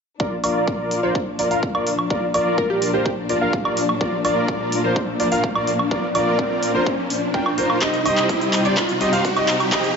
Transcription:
0.20 string section A#2 F3 D4, supersaw synth F4 A#4 D5, grand piano D5, kick, riser
0.44 supersaw synth F4 A#4 D5, grand piano D5, open hi-hat, high woodblock
0.68 kick
0.91 open hi-hat
1.03 supersaw synth F4 A#4 C5, grand piano C5, digital synth lead D5
1.15 kick
1.39 supersaw synth F4 A#4 D5, grand piano D5, open hi-hat
1.51 supersaw synth F4 A#4 F5, grand piano F5, open hi-hat
1.63 kick
1.75 supersaw synth F4 A#4 D5, grand piano D5, high woodblock
1.87 open hi-hat
1.99 high woodblock
2.10 supersaw synth F4 A#4 D5, grand piano D5, kick
2.34 supersaw synth F4 A#4 D5, grand piano D5, open hi-hat, high woodblock
2.58 digital synth lead A#4, kick
2.70 digital synth lead G4
2.82 open hi-hat
2.93 supersaw synth F4 A#4 C5, digital synth lead G4, grand piano C5
3.05 digital synth lead G4, kick
3.29 supersaw synth F4 A#4 D5, grand piano D5, open hi-hat
3.41 supersaw synth F4 A#4 F5, grand piano F5
3.53 kick
3.65 supersaw synth F4 A#4 D5, grand piano D5, high woodblock
3.77 open hi-hat
3.89 high woodblock
4.01 supersaw synth F4 A#4 D5, grand piano D5, kick
4.25 supersaw synth F4 A#4 D5, grand piano D5, open hi-hat, high woodblock
4.48 kick
4.72 open hi-hat
4.84 supersaw synth F4 A#4 C5, grand piano C5
4.96 kick
5.20 supersaw synth F4 A#4 D5, grand piano D5, open hi-hat
5.32 supersaw synth F4 A#4 F5, grand piano F5, open hi-hat
5.44 kick
5.55 supersaw synth F4 A#4 D5, grand piano D5, high woodblock
5.67 open hi-hat
5.79 high woodblock
5.91 supersaw synth F4 A#4 D5, grand piano D5, kick
6.15 supersaw synth F4 A#4 D5, grand piano D5, open hi-hat, high woodblock
6.39 kick
6.63 open hi-hat
6.75 supersaw synth F4 A#4 C5, grand piano C5
6.86 kick
7.10 open hi-hat
7.34 supersaw synth F4 A#4 G5, grand piano G5, kick
7.46 high woodblock
7.58 supersaw synth F4 A#4 C5, grand piano C5, open hi-hat
7.70 high woodblock
7.81 string section C3 G3 D#4, supersaw synth G4 C5 D#5, grand piano D#5, kick, clap, closed hi-hat
7.94 closed hi-hat
8.05 supersaw synth G4 C5 D#5, grand piano D#5, open hi-hat, high woodblock
8.17 clap, closed hi-hat
8.29 kick, closed hi-hat
8.41 closed hi-hat
8.53 clap, open hi-hat
8.65 supersaw synth G4 C5 D5, digital synth lead D5, grand piano D5, closed hi-hat
8.77 kick, clap, closed hi-hat
8.89 closed hi-hat
9.01 supersaw synth G4 C5 D#5, grand piano D#5, open hi-hat
9.13 supersaw synth G4 C5 F5, grand piano F5, open hi-hat
9.25 kick, closed hi-hat
9.36 supersaw synth G4 C5 D#5, grand piano D#5, closed hi-hat, high woodblock
9.48 clap, open hi-hat
9.60 closed hi-hat, high woodblock
9.72 string section F3, supersaw synth G4 C5 D#5, grand piano D#5, kick, clap, closed hi-hat
9.84 closed hi-hat

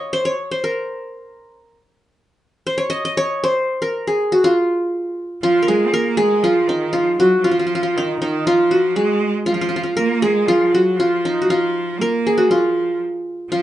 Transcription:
Already playing: qanun C#5 D#5 F5
0.13 qanun C5
0.25 qanun C#5
0.51 qanun C5
0.64 qanun A#4
2.67 qanun C5
2.78 qanun C#5
2.90 qanun D#5
3.05 qanun D#5
3.17 qanun C#5
3.44 qanun C5
3.82 qanun A#4
4.07 qanun G#4
4.32 qanun F#4
4.44 qanun F4
5.42 cello F3, qanun F4
5.62 qanun A#4
5.68 cello G#3, qanun G#4
5.87 cello C4
5.92 cello A#3, qanun A#4
6.17 cello G#3, qanun G#4
6.43 cello F3, qanun F4
6.68 cello D#3, qanun D#4
6.93 cello F3, qanun F4
7.18 cello F#3, qanun F#4
7.38 cello F#3
7.43 cello F3, qanun F4
7.51 qanun F4
7.59 qanun F4
7.67 qanun F4
7.75 qanun F4
7.83 qanun F4
7.96 cello D#3, qanun D#4
8.21 cello D#3, qanun D#4
8.46 cello F3, qanun F4
8.71 qanun F#4
8.96 cello G#3, qanun G#4
9.46 cello F3, qanun F4
9.54 qanun F4
9.61 qanun F4
9.69 qanun F4
9.76 qanun F4
9.83 qanun F4
9.97 cello A#3, qanun A#4
10.22 cello G#3, qanun G#4
10.47 cello F3, qanun F4
10.72 cello F#3, qanun F#4
10.96 cello F3, qanun F4
11.25 qanun D#4
11.42 qanun F#4
11.48 cello F3, qanun F4
11.99 cello A#3, qanun A#4
12.27 qanun G#4
12.38 qanun F#4
12.49 cello F3, qanun F4
13.51 cello F3, qanun F4

